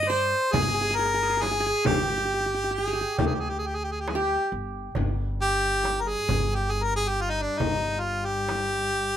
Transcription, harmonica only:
Already playing: D#5
0.10 C5
0.52 G#4
0.96 A#4
1.42 G#4
1.86 G4
2.75 G#4
3.18 G4
3.26 G#4
3.35 G4
3.40 G#4
3.49 G4
3.59 G#4
3.67 G4
3.75 G#4
3.84 G4
3.92 G#4
4.00 G4
4.09 G#4
4.16 G4
5.42 G4
6.01 A#4
6.09 G#4
6.55 G4
6.71 G#4
6.84 A#4
6.96 G#4
7.09 G4
7.21 F4
7.30 D#4
7.42 D4
7.59 D#4
8.00 F4
8.25 G4

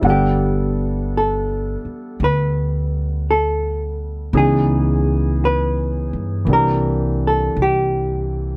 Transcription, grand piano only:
Already playing: E5
0.01 G3 B3 D4 F#5
0.06 A4
4.34 E3 B3 C#4 D#4 G#4
6.45 E3 A#3 C4
6.49 D4 G4

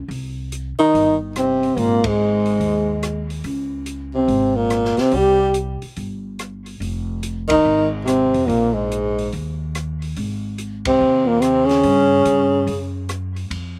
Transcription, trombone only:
0.80 D#4
1.38 C4
1.78 A#3
2.08 G#3
4.16 C4
4.56 A#3
5.01 C4
5.16 G4
7.51 D#4
8.06 C4
8.48 A#3
8.74 G#3
10.88 C4
11.28 A#3
11.41 C4
11.66 C#4

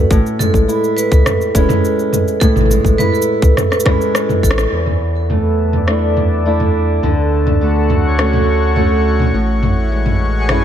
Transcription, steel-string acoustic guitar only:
Already playing: D3 A3 C#4 F#4
0.11 A2
0.39 G#3
0.68 E4
1.55 G#3 C#4 E4
2.41 A2
2.71 G#3
2.99 E4
3.86 G#3 C#4 E4
4.72 E2
5.30 A3
5.88 A3 D4 E4
6.46 A3 D4 E4
7.03 D3
7.61 A3
8.19 A3 C#4 F#4
8.76 A3 C#4 F#4
9.34 A2
9.92 G#3
10.49 G#3 C#4 E4

